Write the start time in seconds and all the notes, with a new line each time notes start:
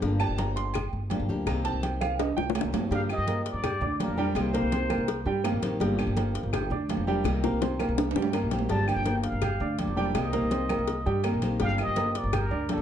0.02 G1 D3 F3 A#3 D4 G4, cowbell, high conga
0.20 F3 A#3 D4 G4 A5, high conga, low agogo, claves
0.29 G1
0.38 A#5, cowbell, high conga, low agogo
0.56 C6, cowbell, high conga
0.74 muted nylon-string guitar stroke, cowbell, high conga, low conga, low agogo, claves
0.93 G1, high conga
1.10 F3 A#3 D4 G4, cowbell, high conga, low timbale, low agogo
1.20 G1
1.29 D2 F3 A#3 D4 G4, high conga
1.46 C2 C3 D#3 A#3 C4 G4 A#5, cowbell, high conga, low agogo, claves
1.65 D#3 A#3 C4 G4 A5, cowbell, high conga
1.73 C2
1.83 G5, cowbell, high conga, low agogo
2.01 F5, high conga, low agogo, claves
2.19 D#5, muted nylon-string guitar stroke, cowbell, high conga, high timbale
2.37 C2 G5, high bongo, high conga, low timbale
2.50 high bongo
2.55 D#3 A#3 C4 G4, cowbell, high conga, low timbale, low agogo, claves
2.61 C2, low bongo
2.73 G2 D#3 A#3 C4 G4, cowbell, low bongo, high conga, low timbale, low agogo
2.91 G2 D3 F3 G3 A#3 D4 G4 F5 G5, cowbell, high conga
3.09 F3 A#3 G4 D#5, high conga, low agogo, claves
3.18 G2
3.27 A#3 A#4 A#5, cowbell, high conga, low agogo
3.46 D5, cowbell, high conga
3.53 G2
3.63 G4 G5 G6, muted nylon-string guitar stroke, cowbell, high conga, low conga, low agogo, claves
3.81 D2 D4 D5 D6, high conga, low conga
4.00 F3 A#3 D4 G4 A#4, cowbell, high conga, low timbale, low agogo
4.08 F2
4.17 F3 G3 A#3 D4 G4 A#4 G5, high conga
4.35 C2 C3 D#3 A#3 C4 G4 C5, cowbell, high conga, low agogo, claves
4.53 D#3 A#3 C4 G4 A#4 A#5, cowbell, high conga
4.62 C2
4.72 C4 C5 C6, cowbell, high conga, low agogo
4.90 A#3 A#4 A#5, high conga, low agogo, claves
4.98 C2
5.08 muted nylon-string guitar stroke, cowbell, high conga
5.25 G2 G3 G4 G5, high conga
5.44 D#3 A#3 C4 G4 A#4 A#5, cowbell, high conga, low timbale, low agogo, claves
5.52 A1
5.62 D#3 A#3 C4 G4, cowbell, high conga, low agogo
5.80 G1 D3 F3 G3 A#3 D4 G4 G5, cowbell, high conga
5.98 F3 A#3 D4 G4, high conga, low agogo, claves
6.07 G1
6.16 A#3 A#4 A#5, cowbell, high conga, low agogo
6.35 cowbell, high conga
6.43 G1
6.52 G4 G5 G6, muted nylon-string guitar stroke, cowbell, high conga, low conga, low agogo, claves
6.70 D2 D4 D5 D6, high conga, low conga
6.89 F3 A#3 D4 G4, cowbell, high conga, low timbale, low agogo
6.97 F1
7.07 F3 G3 A#3 D4 G4 G5, high conga
7.24 C2 C3 D#3 A#3 C4 G4, cowbell, high bongo, low agogo, claves
7.44 D#3 A#3 C4 G4 A#4 A#5, cowbell, high bongo
7.52 C2
7.61 C4 C5 C6, cowbell, high bongo, high conga, low agogo
7.79 A#3 A#4 A#5, high conga, low agogo, claves
7.89 C2
7.98 muted nylon-string guitar stroke, cowbell, low bongo, high conga, high timbale
8.11 high timbale
8.15 G2 G3 G4 G5, low bongo, high conga
8.22 low timbale
8.33 D#3 A#3 C4 G4 A#4 A#5, cowbell, low bongo, high conga, low agogo, claves
8.42 A#1
8.51 D#3 A#3 C4 G4, cowbell, low bongo, high conga, low agogo
8.59 low timbale
8.69 G1 D3 F3 G3 A#3 D4 G4 G5 A5, cowbell
8.87 F3 A#3 D4 G4 G5, high conga, low agogo, claves
8.96 G1
9.05 A#3 A#4 A#5, cowbell, high conga, low agogo
9.23 F5, cowbell, high conga
9.32 G1
9.42 G4 G5 G6, muted nylon-string guitar stroke, cowbell, high conga, low conga, low agogo, claves
9.60 D2 D4 D5 D6, high conga
9.79 F3 A#3 D4 G4 D5, cowbell, high conga, low agogo
9.87 F1
9.97 F3 G3 A#3 D4 G4 D5 G5, high conga
10.15 C2 C3 D#3 A#3 C4 G4 D#5, cowbell, high conga, low agogo, claves
10.33 D#3 A#3 C4 G4 A#4 A#5, cowbell, high conga
10.41 C2
10.51 C4 C5 C6, cowbell, high conga, low agogo
10.69 A#3 A#4 A#5, high conga, low agogo, claves
10.78 C2
10.88 muted nylon-string guitar stroke, cowbell, high conga
11.06 G2 G3 G4 G5, high conga
11.24 D#3 A#3 C4 G4 A#4 A#5, cowbell, high conga, low agogo, claves
11.33 A#1
11.42 D#3 A#3 C4 G4, cowbell, high conga, low agogo
11.60 G1 D3 F3 G3 A#3 D4 G4 F5 G5, cowbell, high conga
11.78 F3 A#3 G4 D#5, high conga, low agogo, claves
11.88 G1
11.96 A#3 A#4 A#5, cowbell, high conga, low agogo
12.15 D5, cowbell, high conga
12.23 G1
12.33 G4 A#4 G5 G6, muted nylon-string guitar stroke, cowbell, high conga, low conga, low agogo, claves
12.51 D2 D4 D5 D6, high conga
12.69 F3 A#3 D4 G4 A4, cowbell, high conga, low timbale, low agogo
12.78 F1